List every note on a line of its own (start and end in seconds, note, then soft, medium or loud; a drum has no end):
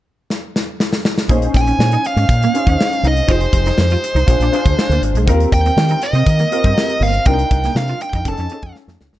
0.30 snare soft
0.56 snare medium
0.80 snare medium
0.93 snare medium
1.05 snare medium
1.18 snare medium
1.29 1.46 A#1 medium
1.29 1.37 A#3 medium
1.29 1.92 C#4 medium
1.29 1.92 D#4 medium
1.29 1.92 G#4 medium
1.29 1.92 C5 medium
1.29 kick medium
1.29 closed hi-hat medium
1.42 closed hi-hat medium
1.54 1.71 A#1 medium
1.54 2.06 G#5 medium
1.54 muted clean electric guitar stroke soft
1.54 kick medium
1.54 snare soft
1.54 closed hi-hat medium
1.67 1.75 C#4 medium
1.67 closed hi-hat soft
1.79 1.96 A#2 medium
1.79 snare medium
1.92 2.00 D#4 medium
1.92 closed hi-hat soft
2.05 3.08 F5 medium
2.05 muted clean electric guitar stroke soft
2.05 closed hi-hat medium
2.16 2.25 G#2 medium
2.16 2.25 C#4 medium
2.16 closed hi-hat soft
2.29 2.46 A#2 medium
2.29 kick medium
2.29 closed hi-hat medium
2.42 2.50 A#3 medium
2.42 closed hi-hat soft
2.54 3.01 C#4 medium
2.54 3.01 D#4 medium
2.54 3.01 G#4 medium
2.54 3.01 C5 medium
2.54 muted clean electric guitar stroke soft
2.54 closed hi-hat medium
2.66 2.75 D#2 medium
2.66 2.75 C#4 medium
2.66 kick medium
2.66 closed hi-hat soft
2.81 snare medium
2.93 closed hi-hat soft
3.03 3.20 C2 medium
3.03 3.12 D#4 medium
3.03 closed hi-hat medium
3.08 3.31 D#5 medium
3.17 closed hi-hat soft
3.27 3.45 F1 medium
3.27 3.90 D#4 medium
3.27 3.37 F4 medium
3.27 3.90 G4 medium
3.27 3.91 G#4 medium
3.27 3.91 C5 medium
3.27 kick loud
3.27 closed hi-hat medium
3.32 3.80 C5 medium
3.40 closed hi-hat medium
3.53 3.70 F1 medium
3.53 muted clean electric guitar stroke soft
3.53 kick medium
3.53 closed hi-hat medium
3.66 3.74 D#4 medium
3.66 snare soft
3.66 closed hi-hat soft
3.78 3.95 F2 medium
3.78 5.00 C5 medium
3.78 snare medium
3.90 3.99 F4 medium
3.90 closed hi-hat soft
4.04 muted clean electric guitar stroke soft
4.04 closed hi-hat medium
4.15 4.24 C2 medium
4.15 4.23 D#4 medium
4.15 closed hi-hat soft
4.26 4.36 A#1 loud
4.26 4.47 D4 medium
4.26 4.47 F4 medium
4.26 4.48 G#4 medium
4.26 4.48 C5 medium
4.26 muted clean electric guitar stroke soft
4.26 kick medium
4.26 closed hi-hat medium
4.39 4.48 A#1 medium
4.39 4.49 D4 medium
4.39 closed hi-hat soft
4.52 4.99 D4 medium
4.52 4.62 D4 medium
4.52 4.99 F4 medium
4.52 5.00 G#4 medium
4.52 5.00 C5 medium
4.52 closed hi-hat medium
4.65 4.74 D2 medium
4.65 kick medium
4.65 closed hi-hat soft
4.79 snare medium
4.89 4.98 D2 medium
4.89 4.99 A#3 medium
4.89 closed hi-hat soft
5.02 5.11 G#1 medium
5.02 muted clean electric guitar stroke soft
5.02 closed hi-hat medium
5.14 5.27 A#1 medium
5.14 5.24 G#3 medium
5.14 closed hi-hat soft
5.26 5.44 D#2 medium
5.26 5.89 C4 medium
5.26 5.36 D#4 medium
5.26 5.90 F4 medium
5.26 5.90 G4 medium
5.26 5.90 A#4 loud
5.26 kick loud
5.26 closed hi-hat medium
5.40 closed hi-hat medium
5.52 5.69 D#2 medium
5.52 6.04 G5 medium
5.52 muted clean electric guitar stroke soft
5.52 kick medium
5.52 closed hi-hat medium
5.66 5.73 C4 medium
5.66 closed hi-hat soft
5.77 5.94 D#3 medium
5.77 snare loud
5.89 5.98 D#4 medium
5.89 closed hi-hat soft
6.02 7.05 D#5 medium
6.02 muted clean electric guitar stroke soft
6.02 closed hi-hat medium
6.13 6.22 C3 medium
6.13 6.22 C4 medium
6.13 closed hi-hat soft
6.26 6.44 D#3 medium
6.26 kick medium
6.26 closed hi-hat medium
6.39 6.47 A#3 medium
6.39 closed hi-hat soft
6.51 6.98 C4 medium
6.51 6.99 F4 medium
6.51 6.99 G4 medium
6.51 6.99 A#4 medium
6.51 muted clean electric guitar stroke soft
6.51 closed hi-hat medium
6.64 6.73 G2 medium
6.64 6.72 C4 medium
6.64 kick medium
6.64 closed hi-hat soft
6.78 snare medium
6.90 closed hi-hat soft
7.00 7.18 G1 medium
7.00 7.09 A#3 medium
7.00 7.26 F5 medium
7.00 open hi-hat medium
7.14 closed hi-hat soft
7.26 7.43 C2 loud
7.26 7.34 C4 medium
7.26 7.88 D4 medium
7.26 7.88 D#4 medium
7.26 7.89 F4 medium
7.26 7.89 A#4 medium
7.26 7.77 G5 medium
7.26 kick loud
7.26 closed hi-hat medium
7.39 closed hi-hat medium
7.51 7.68 C2 medium
7.51 muted clean electric guitar stroke soft
7.51 kick medium
7.51 closed hi-hat medium
7.64 7.72 A#3 medium
7.64 snare soft
7.64 closed hi-hat soft
7.75 7.92 C3 medium
7.75 8.02 F5 medium
7.75 snare medium
7.88 7.97 F4 medium
7.88 closed hi-hat soft
8.01 8.25 G5 medium
8.01 muted clean electric guitar stroke soft
8.01 closed hi-hat medium
8.13 8.21 F2 medium
8.13 8.22 D#4 medium
8.13 kick medium
8.13 closed hi-hat soft
8.25 8.34 F1 medium
8.25 8.46 C#4 medium
8.25 8.46 D#4 medium
8.25 8.46 G#4 medium
8.25 8.46 A4 medium
8.25 8.73 A5 medium
8.25 muted clean electric guitar stroke soft
8.25 kick medium
8.25 closed hi-hat medium
8.37 8.47 F2 medium
8.37 8.47 C#4 medium
8.37 closed hi-hat soft
8.50 8.97 C#4 medium
8.50 8.59 C#4 medium
8.50 8.98 D#4 medium
8.50 8.98 G#4 medium
8.50 8.98 A4 medium
8.50 closed hi-hat medium
8.62 8.72 F2 medium
8.62 kick medium
8.62 closed hi-hat soft
8.75 snare soft
8.88 8.96 F2 medium
8.88 8.96 A3 medium
8.88 snare medium
9.00 9.09 C#2 medium
9.00 muted clean electric guitar stroke soft
9.00 snare medium
9.13 9.19 F#1 medium
9.13 9.19 G#3 medium
9.13 snare medium